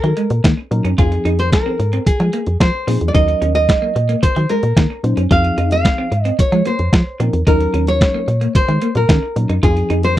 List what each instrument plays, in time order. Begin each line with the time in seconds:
Already playing: nylon-string guitar A#4
0.04 fm bass D#3, clean electric guitar F#3, closed hi-hat
0.17 clean electric guitar G#3, closed hi-hat
0.30 fm bass A#2, closed hi-hat
0.44 fm bass D#3, clean electric guitar A#3, kick, snare, closed hi-hat
0.57 muted clean electric guitar stroke
0.71 fm bass A#2, fm electric piano F#3 C#4 D#4 A#4, closed hi-hat
0.85 fm bass F#2, clean electric guitar C#4, closed hi-hat
0.98 fm bass F2, fm electric piano F3 C4 D#4 G#4, clean electric guitar F4, nylon-string guitar G#4, kick, closed hi-hat
1.12 muted clean electric guitar stroke, closed hi-hat
1.25 fm bass F2, clean electric guitar D#4, closed hi-hat
1.39 nylon-string guitar C5, closed hi-hat
1.52 nylon-string guitar A#4, kick, snare, closed hi-hat
1.66 clean electric guitar C4
1.79 fm bass G#2, muted clean electric guitar stroke, closed hi-hat
1.93 clean electric guitar C4, closed hi-hat
2.06 fm bass F3, nylon-string guitar G#4, muted clean electric guitar stroke, kick, closed hi-hat
2.20 fm bass F3, clean electric guitar G#3, closed hi-hat
2.33 clean electric guitar A#3, closed hi-hat
2.46 fm bass F2, closed hi-hat
2.60 fm bass F3, nylon-string guitar C5, kick, snare, closed hi-hat
2.87 fm bass A#2, fm electric piano F3 C4 D#4 G#4, clean electric guitar C4, open hi-hat
3.01 fm bass E2, closed hi-hat
3.08 nylon-string guitar D5
3.14 fm bass D#2, fm electric piano F#3 C#4 D#4 A#4, clean electric guitar D#4, nylon-string guitar D#5, kick, closed hi-hat
3.28 muted clean electric guitar stroke, closed hi-hat
3.42 fm bass D#2, clean electric guitar C#4, closed hi-hat
3.55 nylon-string guitar D#5, closed hi-hat
3.69 kick, snare, closed hi-hat
3.82 clean electric guitar A#3
3.96 fm bass A#2, muted clean electric guitar stroke, closed hi-hat
4.09 clean electric guitar A#3, closed hi-hat
4.22 fm bass D#3, nylon-string guitar C5, muted clean electric guitar stroke, kick, closed hi-hat
4.36 fm bass D#3, clean electric guitar F#3, closed hi-hat
4.49 clean electric guitar G#3, nylon-string guitar A#4, closed hi-hat
4.63 fm bass A#2, closed hi-hat
4.77 fm bass D#3, clean electric guitar A#3, kick, snare, closed hi-hat
4.90 muted clean electric guitar stroke
5.03 fm bass A#2, fm electric piano F#3 C#4 D#4 C5, closed hi-hat
5.17 fm bass F#2, clean electric guitar C#4, closed hi-hat
5.30 fm bass F2, fm electric piano F3 C4 D#4 G#4, clean electric guitar F4, nylon-string guitar F5, kick, closed hi-hat
5.44 muted clean electric guitar stroke, closed hi-hat
5.58 fm bass F2, clean electric guitar D#4, closed hi-hat
5.71 nylon-string guitar F5, closed hi-hat
5.85 kick, snare, closed hi-hat
5.98 clean electric guitar C4
6.12 fm bass G#2, muted clean electric guitar stroke, closed hi-hat
6.24 clean electric guitar C4, nylon-string guitar D#5, closed hi-hat
6.39 fm bass F3, nylon-string guitar C#5, muted clean electric guitar stroke, kick, closed hi-hat
6.52 fm bass F3, clean electric guitar G#3, closed hi-hat
6.65 clean electric guitar A#3, nylon-string guitar C5, closed hi-hat
6.79 fm bass F2, closed hi-hat
6.93 fm bass F3, kick, snare, closed hi-hat
7.20 fm bass A#2, fm electric piano F3 C4 D#4 A#4, clean electric guitar C4, closed hi-hat
7.33 fm bass E2, closed hi-hat
7.47 fm bass D#2, fm electric piano F3 C#4 D#4 A#4, clean electric guitar D#4, nylon-string guitar A#4, kick, closed hi-hat
7.53 fm electric piano F#3
7.60 muted clean electric guitar stroke, closed hi-hat
7.74 fm bass D#2, clean electric guitar C#4, closed hi-hat
7.87 nylon-string guitar C#5, closed hi-hat
8.01 kick, snare, closed hi-hat
8.14 clean electric guitar A#3
8.28 fm bass A#2, muted clean electric guitar stroke, closed hi-hat
8.41 clean electric guitar A#3, closed hi-hat
8.55 fm bass D#3, nylon-string guitar C5, muted clean electric guitar stroke, kick, closed hi-hat
8.68 fm bass D#3, clean electric guitar G#3, closed hi-hat
8.82 clean electric guitar A#3, closed hi-hat
8.95 fm bass A#2, nylon-string guitar A#4, closed hi-hat
9.09 fm bass D#3, clean electric guitar C#4, kick, snare, closed hi-hat
9.23 muted clean electric guitar stroke
9.36 fm bass A#2, fm electric piano F#3 C#4 D#4 A#4, closed hi-hat
9.49 fm bass F#2, clean electric guitar D#4, closed hi-hat
9.63 fm bass F2, fm electric piano F3 C4 D#4 G#4, clean electric guitar F4, nylon-string guitar G#4, kick, closed hi-hat
9.76 muted clean electric guitar stroke, closed hi-hat
9.90 fm bass F2, clean electric guitar D#4, closed hi-hat
10.03 nylon-string guitar C5, closed hi-hat